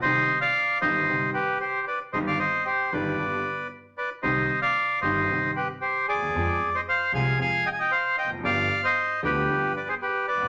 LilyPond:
<<
  \new Staff \with { instrumentName = "Bandoneon" } { \time 4/4 \key c \minor \tempo 4 = 114 << { ees''8. f''8. ees''4 b'8 c''8 d''8 | ees''16 f''16 ees''8 c''8 d''4. r8 d''8 | ees''8. f''8. ees''4 b'8 c''8 d''8~ | d''8. ees''16 f''8 aes''8 aes''8 g''32 aes''32 g''16 f''8 g''8 |
f''8. ees''8. b'4 d''16 c''16 b'8 d''8 | } \\ { c''8. d''8. c''4 g'8 g'8 b'8 | c''16 d''16 c''8 g'8 b'4. r8 b'8 | c''8. d''8. c''4 g'8 g'8 aes'8~ | aes'8. c''16 c''8 f''8 f''8 ees''16 ees''16 c''8 ees''8 |
d''8. c''8. g'4 b'16 aes'16 g'8 b'8 | } >> }
  \new Staff \with { instrumentName = "Upright piano" } { \clef bass \time 4/4 \key c \minor <c, c ees g c' g'>8 r4 <g,, g, ees g c' g'>8 <c, c ees g c' g'>8 r4. | <g,, g, ees g c' g'>8 r4 <g,, g, ees g c' g'>8 <g,, g, d g b g'>8 r4. | <c, c ees g c' g'>8 r4 <g,, g, ees g c' g'>8 <c, c ees g c' g'>8 r4 r32 d,32 ees,32 e,32 | <f, f aes c' aes'>8 r4 <c, c f aes c' aes'>8 <f, f aes c' aes'>8 r4 r32 e,32 f,32 fis,32 |
<g,, g, f b d' g'>8 r4 <d, d f b d' g'>8 <g,, g, f b d' g'>8 r4 r32 a,,32 bes,,32 r32 | }
  \new Staff \with { instrumentName = "Upright bass" } { \clef bass \time 4/4 \key c \minor c,16. r4 r32 g,,16. r32 c,16. r4. r32 | g,,16. r4 r32 g,,16. r32 g,,16. r4. r32 | c,16. r4 r32 g,,16. r32 c,16. r4 r16 d,32 ees,32 e,32 | f,16. r4 r32 c,16. r32 f,16. r4 r16 e,,32 f,,32 fis,,32 |
g,,16. r4 r32 d,16. r32 g,,16. r4 r16 a,,32 bes,,32 r32 | }
>>